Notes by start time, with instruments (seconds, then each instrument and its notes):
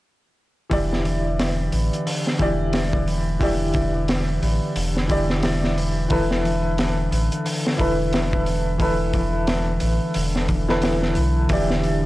0.70 sub bass E1, harp D3, upright piano E3 E4 G4 D5, kick, open hi-hat
0.93 snare
1.05 harp E3, open hi-hat
1.38 harp G3, snare, open hi-hat
1.72 sub bass A1, harp B3, open hi-hat
1.93 closed hi-hat
2.05 harp D3, open hi-hat
2.27 snare
2.39 sub bass E1, upright piano E3 E4 G4 D5, harp E3, kick, open hi-hat
2.73 harp G3, snare, open hi-hat
2.93 kick
3.06 harp B3, open hi-hat
3.39 sub bass E1, harp D3, upright piano E3 E4 G4 D5, kick, open hi-hat
3.73 harp E3, kick, open hi-hat
4.08 harp G3, snare, open hi-hat
4.42 sub bass A1, harp B3, open hi-hat
4.75 sub bass E1, harp D3, open hi-hat
4.97 snare
5.08 upright piano E3 E4 G4 D5, harp E3, kick, open hi-hat
5.30 snare
5.42 harp G3, snare, open hi-hat
5.64 snare
5.76 harp B3, open hi-hat
6.08 sub bass E1, harp D3, upright piano E3 E4 A4 B4, kick, open hi-hat
6.31 snare
6.43 harp E3, open hi-hat
6.77 harp G3, snare, open hi-hat
7.11 sub bass A1, harp B3, open hi-hat
7.32 closed hi-hat
7.44 harp D3, open hi-hat
7.67 snare
7.77 sub bass E1, upright piano E3 E4 A4 B4, harp E3, kick, open hi-hat
8.12 harp G3, snare, open hi-hat
8.33 kick
8.45 harp B3, open hi-hat
8.78 sub bass E1, harp D3, upright piano E3 E4 A4 B4, kick, open hi-hat
9.13 harp E3, kick, open hi-hat
9.47 harp G3, snare, open hi-hat
9.80 sub bass A1, harp B3, open hi-hat
10.14 sub bass E1, harp D3, open hi-hat
10.36 snare
10.48 harp E3, kick, open hi-hat
10.68 upright piano E3 E4 A4 B4, snare
10.82 harp G3, snare, open hi-hat
11.02 snare
11.15 sub bass B1, harp B3, open hi-hat
11.49 sub bass E1, harp D3, upright piano E3 E4 G4 D5, analog synth pad D4 E4 G4, kick, open hi-hat
11.70 snare
11.83 harp E3, open hi-hat